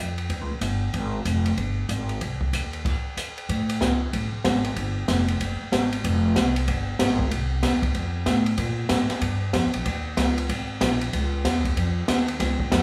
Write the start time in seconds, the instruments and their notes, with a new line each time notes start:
Already playing: upright bass F2
0.18 ride
0.29 upright bass D#2, kick, ride
0.41 upright bass C#2
0.51 upright bass A#1
0.61 upright bass G1, kick, hi-hat pedal, ride
0.93 upright bass G#1, kick, ride
1.25 upright bass F1, kick, hi-hat pedal, ride
1.46 ride
1.57 upright bass G1, kick, ride
1.89 upright bass G#1, kick, hi-hat pedal, ride
2.09 ride
2.21 upright bass C2, kick, ride
2.41 kick
2.53 upright bass D#2, kick, hi-hat pedal, ride
2.73 ride
2.85 kick, crash, ride
3.17 kick, hi-hat pedal, ride
3.38 ride
3.49 upright bass A2, kick, ride
3.69 ride
3.81 upright bass C#2, kick, snare, hi-hat pedal
4.13 upright bass A1, kick, ride
4.33 muted upright bass stroke
4.44 upright bass G#1, kick, snare, hi-hat pedal, ride
4.65 ride
4.76 upright bass G1, kick, ride
5.08 upright bass F1, kick, snare, hi-hat pedal, ride
5.28 ride
5.40 upright bass F#1, kick, ride
5.61 muted upright bass stroke
5.72 upright bass G#1, kick, snare, hi-hat pedal, ride
5.92 ride
6.04 upright bass F1, kick, ride
6.36 upright bass C2, kick, snare, hi-hat pedal, ride
6.56 ride
6.67 upright bass G1, kick, ride
6.99 upright bass G#1, kick, snare, hi-hat pedal, ride
7.19 kick
7.31 upright bass C2, kick, ride
7.63 upright bass D#2, kick, snare, hi-hat pedal, ride
7.82 kick, ride
7.94 upright bass F2, kick, ride
8.26 upright bass A2, kick, snare, hi-hat pedal, ride
8.46 ride
8.58 upright bass A#2, kick, ride
8.89 upright bass G#2, kick, snare, hi-hat pedal, ride
9.09 muted upright bass stroke, snare, ride
9.21 upright bass G2, kick, ride
9.53 upright bass F2, kick, snare, hi-hat pedal, ride
9.64 upright bass C#2
9.74 upright bass A#1, ride
9.85 upright bass D#2, kick, ride
10.17 upright bass C#2, kick, snare, hi-hat pedal, ride
10.38 ride
10.49 upright bass G#1, kick, ride
10.81 upright bass A#1, kick, snare, hi-hat pedal, ride
11.01 ride
11.13 upright bass C#2, kick, ride
11.45 upright bass D#2, kick, snare, hi-hat pedal, ride
11.65 kick, ride
11.76 upright bass F2, kick, ride
12.08 upright bass D#2, kick, snare, hi-hat pedal, ride
12.28 ride
12.40 upright bass C#2, kick, snare, ride
12.60 kick
12.72 upright bass F2, kick, snare, hi-hat pedal, ride